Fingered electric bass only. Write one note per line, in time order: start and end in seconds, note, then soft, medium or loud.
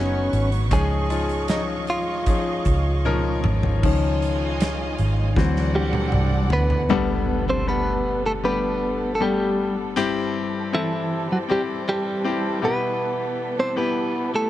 0.00 0.29 F#1 medium
0.33 0.72 G#1 medium
0.72 2.62 C#2 loud
2.66 3.41 C#2 medium
3.45 3.81 G#1 medium
3.83 4.95 C#2 medium
4.99 5.34 G#1 medium
5.37 6.09 D2 medium
6.13 6.48 C2 medium
6.51 6.87 D2 medium